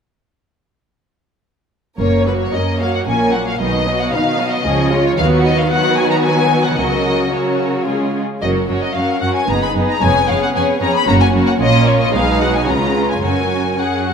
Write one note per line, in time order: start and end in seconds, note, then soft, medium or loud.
1.98 2.44 F#1 soft
1.98 2.47 F#2 soft
1.98 2.24 A#3 soft
1.98 2.24 C#4 soft
1.98 2.24 A#4 soft
1.98 2.24 C#5 medium
2.26 2.53 F#3 soft
2.26 2.52 A#3 soft
2.26 2.53 F#4 soft
2.26 2.32 B4 soft
2.26 2.53 C#5 soft
2.40 2.53 C#5 soft
2.53 3.00 F#2 soft
2.53 2.79 A#3 soft
2.53 2.80 C#4 soft
2.53 2.80 A#4 soft
2.53 2.80 D#5 soft
2.80 3.07 F#3 soft
2.80 3.06 A#3 soft
2.80 3.07 F#4 soft
2.80 3.06 C#5 soft
2.80 2.93 F5 medium
2.95 3.00 F#5 soft
3.06 3.50 A#1 soft
3.06 3.53 A#2 soft
3.06 3.31 A#3 soft
3.06 3.31 C#4 soft
3.06 3.31 A#4 soft
3.06 3.32 C#5 soft
3.06 3.32 G#5 medium
3.32 3.60 F#3 soft
3.32 3.60 A#3 soft
3.32 3.59 F#4 soft
3.32 3.60 A#4 soft
3.32 3.46 F#5 soft
3.47 3.60 F5 medium
3.59 4.03 B1 soft
3.59 4.06 B2 soft
3.59 3.84 D#3 soft
3.59 3.84 D#4 soft
3.59 3.84 B4 soft
3.59 3.99 D#5 medium
3.86 4.12 F#3 soft
3.86 4.12 B3 soft
3.86 4.13 F#4 soft
3.86 4.13 D#5 soft
4.00 4.13 F#5 medium
4.12 4.59 B2 soft
4.12 4.39 D#3 soft
4.12 4.39 D#4 soft
4.12 4.39 B4 soft
4.12 4.51 F5 medium
4.39 4.65 F#3 soft
4.39 4.65 B3 soft
4.39 4.65 F#4 soft
4.39 4.65 D#5 soft
4.51 5.04 D#5 medium
4.65 5.09 C#2 medium
4.65 5.12 C#3 medium
4.65 4.90 F3 soft
4.65 4.90 C#4 soft
4.65 4.90 G#4 soft
4.91 5.18 G#3 soft
4.91 5.18 F4 soft
4.91 5.19 F4 soft
4.91 5.19 C#5 soft
5.06 5.11 C#5 medium
5.17 5.68 D#2 medium
5.17 6.75 D#3 medium
5.17 5.68 F#3 medium
5.17 5.68 B3 medium
5.17 5.68 F#4 medium
5.17 5.68 B4 soft
5.17 5.25 F5 medium
5.44 5.58 D#5 medium
5.58 5.72 F5 medium
5.71 6.77 F#3 medium
5.71 6.77 B3 medium
5.71 6.76 F#4 medium
5.71 6.76 B4 medium
5.71 5.97 F#5 medium
5.97 6.11 G#5 medium
6.10 6.16 A#5 medium
6.23 6.63 G#5 medium
6.64 6.78 F#5 medium
6.77 7.29 C#2 soft
6.77 8.19 C#3 soft
6.77 7.32 F#3 soft
6.77 7.32 C#4 soft
6.77 7.30 F#4 soft
6.77 7.31 A#4 soft
6.77 7.32 D#5 medium
7.32 7.87 F#3 soft
7.32 7.87 C#4 soft
7.32 7.86 F#4 soft
7.32 7.86 A#4 soft
7.32 7.87 C#5 soft
7.86 8.22 G#3 soft
7.86 8.21 C#4 soft
7.86 8.21 F4 soft
7.86 8.20 G#4 soft
8.41 8.66 F#1 soft
8.41 8.50 F#2 soft
8.41 8.67 F#3 soft
8.41 8.67 C#4 soft
8.41 8.68 F#4 soft
8.41 8.68 A#4 soft
8.41 8.50 D#5 medium
8.68 8.77 F#2 soft
8.68 8.94 F#3 soft
8.68 8.94 C#4 soft
8.68 8.94 F#4 soft
8.68 8.94 A#4 soft
8.68 8.82 C#5 soft
8.81 8.95 D#5 soft
8.94 9.04 F#2 soft
8.94 9.21 F#3 soft
8.94 9.22 C#4 soft
8.94 9.20 F#4 soft
8.94 9.20 A#4 soft
8.94 9.21 F5 soft
9.21 9.30 F#2 soft
9.21 9.48 F#3 soft
9.21 9.49 C#4 soft
9.21 9.48 F#4 soft
9.21 9.48 A#4 soft
9.21 9.35 F#5 medium
9.35 9.48 G#5 medium
9.48 9.73 F#1 soft
9.48 9.57 F#2 soft
9.48 9.74 B3 soft
9.48 9.74 D#4 soft
9.48 9.74 G#4 soft
9.48 9.74 B4 soft
9.48 9.62 A#5 medium
9.62 9.70 B5 medium
9.75 9.84 F#2 soft
9.75 10.00 B3 soft
9.75 10.01 D#4 soft
9.75 10.00 G#4 soft
9.75 10.01 B4 soft
9.89 10.01 A#5 medium
10.01 10.26 F1 medium
10.01 10.10 F2 medium
10.01 10.27 B3 soft
10.01 10.27 C#4 soft
10.01 10.26 G#4 soft
10.01 10.26 C#5 soft
10.01 10.28 G#5 medium
10.27 10.36 F2 soft
10.27 10.54 B3 soft
10.27 10.53 C#4 soft
10.27 10.53 G#4 soft
10.27 10.53 C#5 soft
10.27 10.41 F5 medium
10.43 10.48 F#5 medium
10.54 10.62 F2 medium
10.54 10.79 B3 soft
10.54 10.80 C#4 soft
10.54 10.80 G#4 soft
10.54 10.79 C#5 soft
10.54 10.64 G#5 medium
10.81 10.89 F2 medium
10.81 11.07 B3 soft
10.81 11.06 C#4 soft
10.81 11.07 G#4 soft
10.81 11.05 C#5 soft
10.81 10.94 A#5 medium
10.95 11.08 B5 medium
11.07 11.32 F#1 medium
11.07 11.16 F#2 medium
11.07 11.33 A#3 soft
11.07 11.32 C#4 soft
11.07 11.32 F#4 medium
11.07 11.31 C#5 soft
11.07 11.13 A#5 medium
11.20 11.28 G#5 medium
11.33 11.42 F#2 medium
11.33 11.58 A#3 soft
11.33 11.58 C#4 soft
11.33 11.59 F#4 soft
11.33 11.59 C#5 soft
11.47 11.52 F#5 medium
11.59 12.09 A#1 medium
11.59 12.10 A#2 medium
11.59 12.09 A#3 medium
11.59 12.09 C#4 medium
11.59 12.09 F4 medium
11.59 12.09 C#5 medium
11.59 11.86 D#5 medium
11.88 12.00 C#5 medium
12.01 12.14 D#5 medium
12.12 12.64 B1 medium
12.12 12.68 B2 medium
12.12 12.65 G#3 medium
12.12 12.67 D#4 medium
12.12 12.40 G#4 medium
12.12 12.67 B4 medium
12.12 12.40 F5 medium
12.40 12.67 F#4 medium
12.40 12.54 F#5 medium
12.55 12.68 G#5 medium
12.66 13.19 C#2 soft
12.66 13.23 C#3 soft
12.66 13.21 G#3 soft
12.66 13.22 C#4 soft
12.66 13.23 F4 soft
12.66 13.22 B4 soft
12.66 13.09 A#5 medium
13.11 13.21 G#5 soft
13.22 13.75 F#1 soft
13.22 14.14 F#2 soft
13.22 13.77 F#3 soft
13.22 13.77 C#4 soft
13.22 13.80 F#4 soft
13.22 13.78 A#4 soft
13.22 13.78 G#5 medium
13.78 14.14 F#3 soft
13.78 14.14 C#4 soft
13.78 14.06 G#4 soft
13.78 14.14 F#5 soft
14.07 14.14 F#4 soft